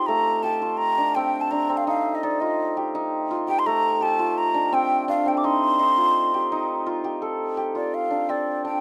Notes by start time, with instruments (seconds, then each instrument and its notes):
Already playing: hammered dulcimer C4 D#4 F4 G4
0.06 hammered dulcimer A3, flute A#5
0.43 hammered dulcimer G4, flute A5
0.62 hammered dulcimer F4
0.77 flute A#5
0.98 hammered dulcimer D4
1.15 hammered dulcimer C4, flute G5
1.41 flute A5
1.51 hammered dulcimer D4, flute A#5
1.69 hammered dulcimer C4
1.77 flute F5
1.87 hammered dulcimer D#4, flute F5
2.15 flute D#5
2.23 hammered dulcimer D#4, flute D5
2.40 hammered dulcimer F4, flute D#5
2.77 hammered dulcimer G4
2.95 hammered dulcimer D#4
3.31 hammered dulcimer F4
3.48 hammered dulcimer G4, flute G5
3.59 flute C6
3.66 hammered dulcimer A3, flute A#5
4.01 hammered dulcimer G4, flute A5
4.19 hammered dulcimer F4
4.38 flute A#5
4.54 hammered dulcimer D4
4.72 hammered dulcimer C4, flute G5
5.08 hammered dulcimer D4, flute F5
5.26 hammered dulcimer C4, flute G5
5.37 flute D6
5.44 hammered dulcimer D#4, flute C6
5.79 hammered dulcimer D#4
5.97 hammered dulcimer F4
6.34 hammered dulcimer G4
6.52 hammered dulcimer D#4
6.86 hammered dulcimer F4
7.04 hammered dulcimer G4
7.22 hammered dulcimer A4
7.57 hammered dulcimer G4
7.75 hammered dulcimer F4, flute D5
7.94 flute F5
8.11 hammered dulcimer D4
8.29 hammered dulcimer C4, flute D5
8.65 hammered dulcimer D4, flute G5